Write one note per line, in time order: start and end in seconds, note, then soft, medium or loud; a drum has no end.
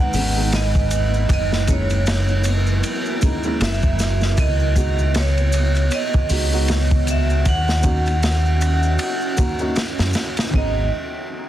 0.00 1.27 G#3 medium
0.00 10.55 B3 medium
0.00 1.27 D#4 medium
0.00 1.27 B4 medium
0.00 0.50 F#5 loud
0.13 1.26 G#1 loud
0.13 0.31 D#3 medium
0.13 0.32 G#3 medium
0.13 0.32 B3 medium
0.13 0.32 C#4 medium
0.13 open hi-hat medium
0.13 maracas medium
0.36 0.55 D#3 medium
0.36 0.55 G#3 medium
0.36 0.56 B3 medium
0.36 0.56 D#4 loud
0.36 maracas soft
0.52 1.32 D#5 loud
0.52 snare loud
0.52 ride medium
0.52 maracas medium
0.75 kick loud
0.75 maracas soft
0.91 ride medium
0.91 maracas loud
1.14 maracas soft
1.29 2.81 F#1 loud
1.29 4.35 F#3 medium
1.29 4.35 E4 medium
1.29 4.35 A#4 medium
1.29 kick loud
1.29 ride medium
1.29 maracas medium
1.33 1.68 D#5 loud
1.52 snare medium
1.52 maracas soft
1.67 1.92 G#3 medium
1.67 1.93 A#3 medium
1.67 1.93 C#4 medium
1.67 1.93 E4 medium
1.67 2.42 C#5 medium
1.67 kick loud
1.67 ride medium
1.67 maracas medium
1.90 ride soft
1.90 maracas soft
2.06 snare loud
2.06 ride loud
2.06 maracas medium
2.28 maracas soft
2.44 ride medium
2.44 maracas medium
2.67 maracas soft
2.83 ride medium
2.83 maracas medium
3.06 maracas soft
3.21 3.39 G#3 medium
3.21 3.39 A#3 medium
3.21 3.40 C#4 medium
3.21 3.40 D#4 medium
3.21 kick loud
3.21 ride medium
3.21 maracas medium
3.43 3.63 G#3 medium
3.43 3.63 A#3 medium
3.43 3.64 C#4 medium
3.43 3.64 E4 loud
3.43 maracas soft
3.60 4.35 F#1 loud
3.60 4.41 E5 medium
3.60 snare loud
3.60 ride medium
3.60 maracas soft
3.83 kick loud
3.83 maracas soft
3.99 snare medium
3.99 ride medium
3.99 maracas medium
4.21 snare soft
4.21 maracas soft
4.37 5.88 C#2 loud
4.37 7.43 B3 medium
4.37 10.50 F#4 medium
4.37 7.43 C#5 medium
4.37 5.18 D#5 loud
4.37 kick loud
4.37 ride medium
4.37 maracas medium
4.59 maracas soft
4.75 5.00 G#3 medium
4.75 5.00 B3 medium
4.75 5.00 D#4 medium
4.75 5.01 F#4 medium
4.75 kick medium
4.75 ride medium
4.75 maracas medium
4.99 maracas soft
5.14 5.95 C#5 medium
5.14 snare loud
5.14 ride medium
5.14 maracas medium
5.37 ride soft
5.37 maracas soft
5.52 ride medium
5.52 maracas medium
5.75 ride soft
5.75 maracas soft
5.91 7.12 D#5 loud
5.91 ride medium
5.91 maracas medium
6.13 kick loud
6.13 maracas soft
6.29 7.42 C#2 loud
6.29 6.47 G#3 medium
6.29 6.47 B3 medium
6.29 6.47 D#4 medium
6.29 6.48 F#4 medium
6.29 open hi-hat medium
6.29 maracas medium
6.52 6.70 G#3 medium
6.52 6.71 B3 medium
6.52 6.71 D#4 medium
6.52 6.72 F#4 loud
6.52 maracas soft
6.68 snare loud
6.68 ride medium
6.68 maracas medium
6.91 kick loud
6.91 maracas soft
7.07 7.45 E5 medium
7.07 ride medium
7.07 maracas loud
7.30 maracas soft
7.45 8.96 D#2 loud
7.45 10.51 C#4 medium
7.45 10.51 D#5 medium
7.45 9.74 F#5 loud
7.45 kick loud
7.45 ride loud
7.45 maracas soft
7.68 snare medium
7.68 maracas soft
7.82 8.07 A#3 medium
7.82 8.08 C#4 medium
7.82 8.08 D#4 medium
7.82 8.08 F#4 medium
7.82 kick loud
7.82 ride medium
7.82 maracas medium
8.06 ride soft
8.06 maracas soft
8.23 snare loud
8.23 ride medium
8.23 maracas medium
8.45 maracas soft
8.61 ride medium
8.61 maracas medium
8.83 maracas soft
8.98 ride loud
8.98 maracas soft
9.21 maracas soft
9.37 9.54 A#3 medium
9.37 9.55 C#4 medium
9.37 9.55 D#4 medium
9.37 9.55 F#4 medium
9.37 kick medium
9.37 ride medium
9.37 maracas medium
9.59 9.78 A#3 medium
9.59 9.79 C#4 medium
9.59 9.79 D#4 medium
9.59 9.79 F#4 loud
9.59 maracas soft
9.76 snare loud
9.76 ride medium
9.76 maracas soft
9.98 10.13 F#2 medium
9.98 snare loud
9.98 ride medium
9.98 maracas soft
10.13 snare loud
10.13 ride medium
10.13 maracas medium
10.36 snare loud
10.36 ride medium
10.36 maracas soft
10.50 10.89 G#1 loud
10.50 10.81 D#3 medium
10.50 10.83 G#3 medium
10.50 kick loud
10.55 10.84 B3 medium
10.55 10.85 D#4 medium
10.55 10.90 D#5 medium